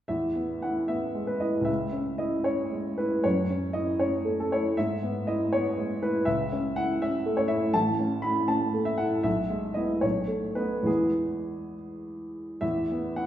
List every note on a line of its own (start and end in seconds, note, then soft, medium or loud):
0.08 1.64 E2 soft
0.08 0.63 E5 medium
0.36 0.79 B3 soft
0.62 1.06 E4 soft
0.62 0.90 F#5 medium
0.88 1.31 B3 soft
0.88 1.28 E5 medium
1.15 1.57 G#3 soft
1.27 1.41 B4 medium
1.40 1.68 E4 soft
1.40 1.67 D#5 medium
1.61 3.17 C#2 soft
1.61 2.19 E5 medium
1.93 2.36 C#4 soft
2.18 2.62 E4 soft
2.18 2.46 D#5 medium
2.44 2.88 C#4 soft
2.44 2.98 C#5 medium
2.72 3.14 G#3 soft
2.98 3.24 E4 soft
2.98 3.23 B4 medium
3.24 4.73 F#2 soft
3.24 3.74 C#5 medium
3.50 3.90 C#4 soft
3.73 4.16 E4 soft
3.73 4.00 D#5 medium
3.99 4.41 C#4 soft
3.99 4.38 C#5 medium
4.25 4.66 A3 soft
4.40 4.52 A4 medium
4.52 4.78 E4 soft
4.52 4.77 C#5 medium
4.77 6.23 G#2 soft
4.77 5.27 E5 medium
5.03 5.43 B3 soft
5.27 5.67 E4 soft
5.27 5.52 D#5 medium
5.53 5.92 B3 soft
5.53 6.02 C#5 medium
5.77 6.16 G#3 soft
6.02 6.27 E4 soft
6.02 6.27 B4 medium
6.25 7.71 C#2 soft
6.25 6.75 E5 medium
6.52 6.91 C#4 soft
6.76 7.15 E4 soft
6.76 7.01 F#5 medium
7.02 7.40 C#4 soft
7.02 7.38 E5 medium
7.26 7.65 A3 soft
7.37 7.49 C#5 medium
7.48 7.74 E4 soft
7.48 7.74 E5 medium
7.74 9.22 A1 soft
7.74 8.24 A5 medium
7.99 8.39 C#4 soft
8.22 8.64 E4 soft
8.22 8.48 B5 medium
8.48 8.90 C#4 soft
8.48 8.87 A5 medium
8.74 9.15 A3 soft
8.85 8.99 E5 medium
8.98 9.25 E4 soft
8.98 9.24 F#5 medium
9.23 10.00 B1 soft
9.23 9.76 E5 medium
9.50 9.92 G#3 soft
9.74 10.00 B3 soft
9.74 10.00 E4 soft
9.74 10.02 D#5 medium
10.01 10.84 B1 soft
10.01 10.57 C#5 medium
10.27 10.74 A3 soft
10.55 10.83 B3 soft
10.55 10.83 D#4 soft
10.55 10.86 B4 medium
10.83 12.56 E2 soft
10.83 12.56 G#3 soft
10.83 12.57 B3 soft
10.83 12.57 E4 soft
10.83 11.73 G#4 medium
12.61 13.26 E2 soft
12.61 13.18 E5 medium
12.91 13.26 B3 soft
13.16 13.26 E4 soft
13.16 13.26 F#5 medium